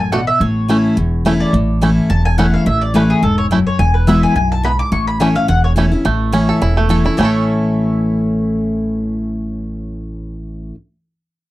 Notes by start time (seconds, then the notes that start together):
Already playing: A1 F#2
0.00 G#5
0.12 B2 A3 D4 F#4 F#5
0.27 E5
0.40 A1 A2 C#5
0.68 E3 A3 C#4 E4
0.97 E1 E2
1.25 E3 A3 C#4 E4
1.40 D5
1.53 A1 A2
1.81 E3 A3 C#4 E4
2.10 E1 E2 A5
2.25 G#5
2.38 E3 A3 C#4 E4 F#5
2.54 F5
2.66 A1 A2 E5
2.81 D5
2.94 E3 A3 C#4 E4 B4
3.10 G#4
3.23 E1 G#2 A4
3.38 C#5
3.51 F#2 A3 C#4 E4
3.67 C#5
3.79 E1 E2 G#5
3.94 B4
4.07 E3 G#3 B3 E4 E5
4.23 G#5
4.36 B1 F#2 G#5
4.52 A5
4.63 G#2 B3 E4 B5
4.79 D6
4.92 A1 A2 C#6
5.07 B5
5.20 E3 A3 C#4 E4 G#5
5.35 C#4 E4 F5
5.48 E1 E2 F#5
5.64 C#5
5.76 E3 A3 C#4 E4
5.92 C#4 E4
6.05 A1 A2 A3
6.32 E3 A3 C#4 E4
6.49 A4
6.62 E1 E2 E4
6.77 A3
6.89 E3 A3 C#4 E4 A4
7.05 C#4 E4
7.17 A1 A2 E3 A3 C#4 E4 C#5
7.23 E4 A4